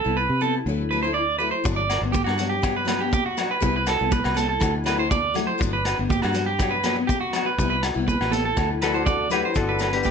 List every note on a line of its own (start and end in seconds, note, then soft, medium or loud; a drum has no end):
0.00 0.16 A4 medium
0.04 0.27 C2 medium
0.04 0.20 B3 soft
0.04 0.19 E4 medium
0.17 0.40 B4 medium
0.29 0.61 C3 medium
0.41 0.56 G3 medium
0.41 0.57 B3 medium
0.41 0.58 E4 medium
0.41 0.54 A4 medium
0.66 1.52 D2 loud
0.66 0.82 F#3 medium
0.66 0.83 A3 medium
0.66 0.83 E4 medium
0.91 1.04 F#3 medium
0.91 1.05 A3 medium
0.91 1.03 E4 medium
0.91 1.02 B4 medium
1.03 1.19 E4 medium
1.03 1.14 C5 medium
1.07 1.20 A3 soft
1.14 1.38 D5 medium
1.39 1.55 F#3 medium
1.39 1.55 A3 medium
1.39 1.56 E4 medium
1.39 1.51 B4 medium
1.51 1.64 C5 medium
1.64 1.98 G1 medium
1.64 1.80 F#3 medium
1.64 1.80 B3 medium
1.64 1.81 D4 medium
1.64 kick medium
1.64 muted conga soft
1.64 maracas medium
1.76 2.01 D5 medium
1.90 cross-stick medium
1.90 closed hi-hat soft
1.90 low agogo medium
1.90 maracas medium
2.01 2.23 G1 medium
2.01 2.18 B3 soft
2.01 2.17 D4 medium
2.12 2.24 G4 medium
2.12 kick medium
2.12 high conga loud
2.12 maracas loud
2.24 3.13 G2 medium
2.24 2.49 F#4 medium
2.24 cross-stick medium
2.24 low agogo medium
2.38 2.54 F#3 medium
2.38 2.54 B3 medium
2.38 2.54 D4 medium
2.38 closed hi-hat medium
2.38 maracas medium
2.49 2.74 G4 medium
2.62 2.78 F#3 medium
2.62 2.79 B3 medium
2.62 2.79 D4 medium
2.62 kick medium
2.62 cross-stick medium
2.62 muted conga soft
2.62 low agogo medium
2.62 maracas medium
2.76 3.00 B4 medium
2.85 3.00 F#3 medium
2.85 3.00 B3 medium
2.85 2.97 D4 medium
2.85 cross-stick medium
2.85 closed hi-hat medium
2.85 muted conga soft
2.85 high conga medium
2.85 low agogo medium
2.85 maracas medium
2.99 3.16 B3 soft
2.99 3.15 D4 medium
2.99 3.13 G4 medium
3.12 3.25 G4 medium
3.12 kick medium
3.12 high conga medium
3.12 maracas loud
3.26 3.49 F#4 medium
3.37 3.53 F#3 medium
3.37 3.54 D4 medium
3.37 cross-stick medium
3.37 closed hi-hat soft
3.37 muted conga soft
3.37 low agogo medium
3.37 maracas medium
3.51 3.74 B4 medium
3.60 3.95 C2 medium
3.60 3.77 G3 medium
3.60 3.77 B3 medium
3.60 3.77 E4 medium
3.60 kick medium
3.60 muted conga soft
3.60 maracas loud
3.76 3.87 B4 medium
3.86 4.11 A4 medium
3.86 cross-stick medium
3.86 closed hi-hat medium
3.86 low agogo medium
3.86 maracas medium
3.99 4.22 C2 medium
3.99 4.16 B3 soft
3.99 4.14 E4 medium
4.11 4.36 B4 medium
4.11 kick medium
4.11 high conga medium
4.11 maracas loud
4.24 4.57 C2 medium
4.24 cross-stick medium
4.24 low agogo medium
4.34 4.51 G3 medium
4.34 4.51 B3 medium
4.34 4.52 E4 medium
4.34 4.48 A4 medium
4.34 closed hi-hat medium
4.34 high conga medium
4.34 maracas medium
4.49 4.73 A4 medium
4.60 5.47 D2 loud
4.60 4.76 F#3 medium
4.60 4.76 A3 medium
4.60 4.77 E4 medium
4.60 kick medium
4.60 cross-stick medium
4.60 muted conga soft
4.60 low agogo medium
4.60 maracas loud
4.84 4.98 F#3 medium
4.84 4.99 A3 medium
4.84 4.96 E4 medium
4.84 4.99 B4 medium
4.84 cross-stick medium
4.84 closed hi-hat soft
4.84 muted conga soft
4.84 low agogo medium
4.84 maracas medium
4.97 5.14 A3 soft
4.97 5.13 E4 medium
4.97 5.10 C5 medium
5.10 5.35 D5 medium
5.10 kick medium
5.10 high conga medium
5.10 maracas loud
5.34 5.50 F#3 medium
5.34 5.51 A3 medium
5.34 5.51 E4 medium
5.34 closed hi-hat soft
5.34 muted conga soft
5.34 low conga medium
5.34 low agogo medium
5.34 maracas medium
5.47 5.59 C5 medium
5.58 5.93 G1 medium
5.58 5.74 F#3 medium
5.58 5.75 B3 medium
5.58 5.75 D4 medium
5.58 kick medium
5.58 muted conga soft
5.62 maracas loud
5.73 5.97 B4 medium
5.85 cross-stick medium
5.85 closed hi-hat medium
5.85 low agogo medium
5.85 maracas medium
5.97 6.20 G1 medium
5.97 6.13 B3 soft
5.97 6.12 D4 medium
6.09 6.22 G4 medium
6.09 kick medium
6.09 high conga medium
6.09 maracas loud
6.22 7.09 G2 medium
6.22 6.46 F#4 medium
6.22 cross-stick medium
6.22 low agogo medium
6.33 6.49 F#3 medium
6.33 6.49 B3 medium
6.33 6.50 D4 medium
6.33 closed hi-hat soft
6.33 maracas medium
6.46 6.70 G4 medium
6.59 6.75 F#3 medium
6.59 6.75 B3 medium
6.59 6.76 D4 medium
6.59 kick medium
6.59 cross-stick medium
6.59 muted conga soft
6.59 low agogo medium
6.59 maracas medium
6.71 6.95 B4 medium
6.83 6.96 F#3 medium
6.83 6.97 B3 medium
6.83 6.95 D4 medium
6.83 cross-stick medium
6.83 closed hi-hat soft
6.83 muted conga soft
6.83 high conga medium
6.83 low agogo medium
6.83 maracas medium
6.96 7.12 B3 medium
6.96 muted clean electric guitar stroke medium
6.96 muted steel-string acoustic guitar stroke medium
7.07 7.20 G4 medium
7.07 kick loud
7.07 high conga medium
7.07 maracas medium
7.21 7.44 F#4 medium
7.33 7.49 F#3 medium
7.33 7.49 B3 medium
7.33 7.50 D4 medium
7.33 cross-stick medium
7.33 closed hi-hat soft
7.33 muted conga soft
7.33 low agogo medium
7.33 maracas medium
7.46 7.69 B4 medium
7.58 7.91 C2 loud
7.58 7.74 G3 medium
7.58 7.74 B3 medium
7.58 7.75 E4 medium
7.58 kick medium
7.58 muted conga soft
7.58 maracas medium
7.70 7.82 B4 medium
7.83 muted clean electric guitar stroke medium
7.83 cross-stick medium
7.83 closed hi-hat medium
7.83 low agogo medium
7.83 maracas medium
7.94 8.17 C2 medium
7.94 8.11 B3 soft
7.94 8.10 E4 medium
8.08 8.31 B4 medium
8.08 kick medium
8.08 high conga loud
8.08 maracas medium
8.20 8.52 A1 medium
8.20 cross-stick medium
8.20 low agogo medium
8.31 8.47 G3 medium
8.31 8.47 B3 medium
8.31 8.48 E4 medium
8.31 8.44 A4 medium
8.31 closed hi-hat medium
8.31 high conga medium
8.31 low conga medium
8.31 maracas medium
8.45 8.69 A4 medium
8.56 9.43 D2 medium
8.56 8.72 F#3 medium
8.56 8.72 A3 medium
8.56 8.73 E4 medium
8.56 kick medium
8.56 cross-stick medium
8.56 muted conga soft
8.56 low agogo medium
8.56 maracas medium
8.81 9.28 D3 medium
8.81 8.94 F#3 medium
8.81 8.95 A3 medium
8.81 8.92 E4 medium
8.81 9.29 F#4 medium
8.81 9.29 A4 medium
8.81 8.94 B4 medium
8.81 cross-stick medium
8.81 closed hi-hat medium
8.81 muted conga soft
8.81 low agogo medium
8.81 maracas medium
8.93 9.10 A3 soft
8.93 9.09 E4 medium
8.93 9.05 C5 medium
9.06 9.30 D5 medium
9.06 kick medium
9.06 high conga medium
9.06 maracas medium
9.30 9.53 D3 medium
9.30 9.46 F#3 medium
9.30 9.47 A3 medium
9.30 9.47 E4 medium
9.30 9.55 G4 medium
9.30 9.55 B4 medium
9.30 9.44 B4 medium
9.30 closed hi-hat soft
9.30 muted conga soft
9.30 low conga medium
9.30 low agogo medium
9.30 maracas medium
9.45 9.56 C5 medium
9.54 10.11 G1 medium
9.54 9.90 D3 medium
9.54 9.70 F#3 medium
9.54 9.71 B3 medium
9.54 9.71 D4 medium
9.54 9.92 F#4 medium
9.54 9.93 A4 medium
9.54 kick medium
9.54 closed hi-hat soft
9.54 muted conga soft
9.54 maracas medium
9.69 9.92 B4 medium
9.79 9.93 F#3 medium
9.79 9.92 B3 medium
9.79 9.89 D4 medium
9.79 cross-stick medium
9.79 closed hi-hat soft
9.79 low agogo medium
9.79 maracas medium
9.90 10.11 D3 medium
9.90 10.08 B3 soft
9.90 10.07 D4 medium
9.90 10.11 B4 medium
9.90 closed hi-hat soft
9.94 10.11 G4 medium
10.03 10.11 G4 medium
10.03 kick medium
10.03 closed hi-hat soft
10.03 high conga medium
10.03 maracas medium